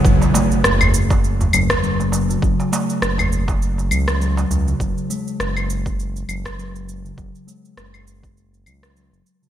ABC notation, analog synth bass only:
X:1
M:4/4
L:1/16
Q:"Swing 16ths" 1/4=101
K:F#m
V:1 name="Analog synth bass" clef=bass
F,,, z3 F,,,6 F,,,6 | F,,, z3 F,,,6 C,,4 C,,2 | F,,, z3 F,,,6 F,,,6 | F,,, z3 F,,,6 C,,3 F,,, z2 |]